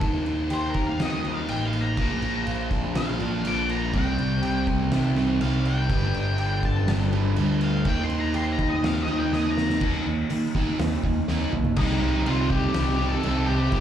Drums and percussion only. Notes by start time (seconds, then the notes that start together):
0.01 kick, crash
0.26 crash
0.50 crash
0.74 kick, crash
1.00 snare, crash
1.25 crash
1.49 crash
1.73 crash
1.97 kick, crash
2.22 crash
2.47 crash
2.71 kick, crash
2.95 snare, crash
3.20 crash
3.45 crash
3.69 crash
3.94 kick, crash
4.19 crash
4.43 crash
4.67 kick, crash
4.91 snare, crash
5.16 snare, crash
5.41 crash
5.65 crash
5.90 kick, crash
6.14 crash
6.38 crash
6.63 kick, crash
6.88 snare, crash
7.13 crash
7.36 crash
7.61 crash
7.85 kick, crash
8.10 crash
8.34 crash
8.59 kick, crash
8.84 snare, crash
9.08 crash
9.33 snare
9.58 snare
9.70 snare
9.81 kick, crash
10.30 open hi-hat
10.55 kick, snare
10.79 snare, open hi-hat
11.04 kick
11.28 snare
11.53 mid tom
11.65 floor tom
11.76 kick, crash
12.26 crash
12.50 kick
12.74 snare, crash
13.23 crash
13.72 kick, crash